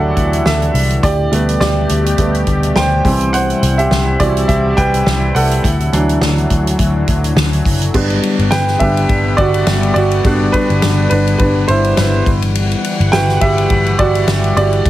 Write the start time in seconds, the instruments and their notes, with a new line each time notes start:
Already playing: picked electric bass D2, analog synth pad D3 E3 E4, upright piano E3 F#3 D4 F#4 G4 A4 D5 E5 F#5
0.17 picked electric bass D2, kick, closed hi-hat
0.33 closed hi-hat
0.46 picked electric bass D2, upright piano A4 E5, snare
0.62 closed hi-hat
0.74 picked electric bass C2, open hi-hat
0.90 closed hi-hat
1.03 picked electric bass D2, analog synth pad B2 A3 G4, upright piano G4 D5, kick, closed hi-hat
1.32 picked electric bass D2, upright piano G3 A3 B3, closed hi-hat
1.49 closed hi-hat
1.60 picked electric bass D2, upright piano G4 D5, snare
1.89 picked electric bass D2, closed hi-hat
2.06 closed hi-hat
2.18 picked electric bass D2, upright piano G3 A3 B3, kick, closed hi-hat
2.34 closed hi-hat
2.47 picked electric bass D2, kick, closed hi-hat
2.63 closed hi-hat
2.76 picked electric bass D2, upright piano C5 G5, snare
3.04 picked electric bass C2, analog synth pad C3 G3 E4, upright piano E3 G3 C4, kick, open hi-hat
3.21 closed hi-hat
3.33 upright piano C5 F#5, closed hi-hat
3.50 closed hi-hat
3.62 picked electric bass C2, closed hi-hat
3.78 upright piano G4 E5, closed hi-hat
3.91 picked electric bass C2, snare
4.19 picked electric bass C2, upright piano E3 G3 C4 F#4 D5, kick, closed hi-hat
4.37 closed hi-hat
4.48 picked electric bass C2, upright piano G4 E5, kick, closed hi-hat
4.77 picked electric bass C2, upright piano B4 G5, kick, closed hi-hat
4.94 closed hi-hat
5.07 picked electric bass C2, snare
5.35 picked electric bass C2, upright piano A4 F#5, open hi-hat
5.51 closed hi-hat
5.64 picked electric bass D2, analog synth pad D3 F#3, kick, closed hi-hat
5.80 closed hi-hat
5.92 picked electric bass D2, upright piano E3 F#3 D4, closed hi-hat
6.09 closed hi-hat
6.21 picked electric bass D2, snare
6.38 closed hi-hat
6.50 picked electric bass D2, kick, closed hi-hat
6.67 closed hi-hat
6.79 picked electric bass D2, kick, closed hi-hat
7.08 picked electric bass D2, kick, closed hi-hat
7.24 closed hi-hat
7.36 picked electric bass D2, snare
7.53 closed hi-hat
7.65 picked electric bass F#1, kick, open hi-hat
7.82 closed hi-hat
7.94 picked electric bass G1, analog synth pad D3 G3 B3, upright piano G3 B3 D4, kick, crash
8.10 ride
8.23 ride
8.39 picked electric bass G1, ride
8.51 picked electric bass G1, upright piano B4 G5, snare, ride
8.68 snare
8.79 picked electric bass G1, upright piano G3 B3 D4 G4 E5, kick, ride
8.97 ride
9.09 picked electric bass G1, kick, ride
9.37 picked electric bass G1, upright piano F#4 D5, kick, ride
9.54 ride
9.67 picked electric bass G1, snare, ride
9.83 ride
9.94 picked electric bass G1, upright piano F#4 D5, ride
10.11 ride
10.24 picked electric bass G1, upright piano G3 B3 D4, kick, ride
10.52 upright piano D4 B4, kick, ride
10.70 picked electric bass G1, ride
10.82 picked electric bass G1, snare, ride
11.10 picked electric bass G1, upright piano D4 B4, ride
11.27 ride
11.38 picked electric bass G1, upright piano D4 B4, kick, ride
11.68 picked electric bass G1, upright piano E4 C5, ride
11.84 ride
11.97 picked electric bass G1, upright piano E4 B4, snare, ride
12.26 picked electric bass G1, analog synth pad E3 G3 F#5, kick, ride
12.42 ride
12.55 ride
12.71 ride
12.84 ride
13.00 picked electric bass G1, ride
13.12 picked electric bass G1, upright piano G3 E4 F#4 B4 G5, snare, ride
13.29 snare
13.41 picked electric bass G1, upright piano G4 E5, kick, ride
13.58 ride
13.70 picked electric bass G1, kick, ride
13.86 ride
13.99 picked electric bass G1, upright piano F#4 D5, kick, ride
14.15 ride
14.27 picked electric bass G1, snare, ride
14.44 ride
14.56 picked electric bass G1, upright piano G3 E4 F#4 G4 D5, ride
14.73 ride
14.85 picked electric bass C2, analog synth pad G3 C4, kick, ride